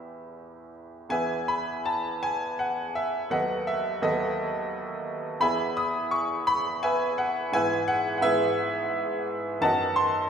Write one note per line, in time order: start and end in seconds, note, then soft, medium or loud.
0.00 1.05 E2 medium
0.00 1.06 E3 soft
0.00 1.07 B3 soft
0.00 1.07 G4 soft
0.00 0.68 E5 medium
0.00 0.68 B5 medium
0.00 0.72 E6 medium
1.09 3.29 E2 medium
1.09 3.29 E3 soft
1.09 3.30 B3 soft
1.09 3.30 G#4 soft
1.09 1.47 B4 medium
1.09 1.47 E5 medium
1.09 1.49 G#5 loud
1.48 1.87 B5 loud
1.85 2.24 A5 loud
2.23 2.60 G#5 loud
2.59 2.97 F#5 medium
2.95 3.33 E5 medium
3.30 4.00 D#2 medium
3.30 4.01 F#3 soft
3.30 4.02 B3 soft
3.30 4.02 A4 medium
3.30 3.67 B4 medium
3.30 3.67 D#5 medium
3.30 3.69 F#5 loud
3.67 4.04 E5 medium
4.02 5.38 D#2 medium
4.02 5.38 F#3 soft
4.02 5.39 B3 medium
4.02 5.39 A4 medium
4.02 5.39 B4 medium
4.02 5.43 D#5 loud
5.40 7.51 E2 medium
5.40 7.51 E3 medium
5.40 7.52 B3 medium
5.40 7.52 G#4 medium
5.40 5.75 E5 medium
5.40 5.75 G#5 medium
5.40 5.77 B5 loud
5.77 6.13 D#6 loud
6.11 6.48 C#6 medium
6.47 6.84 B5 loud
6.83 7.18 B4 medium
6.83 7.18 E5 medium
6.83 7.20 G#5 loud
7.18 7.55 F#5 loud
7.52 8.20 G#2 medium
7.52 8.21 E3 medium
7.52 8.22 B3 medium
7.52 8.22 E4 medium
7.52 7.88 B4 medium
7.52 7.88 E5 medium
7.52 7.90 G#5 loud
7.88 8.16 F#5 loud
8.18 9.58 G#2 medium
8.18 8.25 F#5 medium
8.22 9.59 E3 medium
8.22 9.59 B3 medium
8.22 9.60 E4 medium
8.22 9.60 G#4 medium
8.22 9.60 B4 medium
8.22 9.63 E5 loud
9.61 10.30 F#2 medium
9.61 10.30 D#3 medium
9.61 10.30 B3 medium
9.61 10.30 F#4 medium
9.61 9.95 D#5 medium
9.61 9.95 F#5 medium
9.61 9.97 A5 loud
9.96 10.30 C6 loud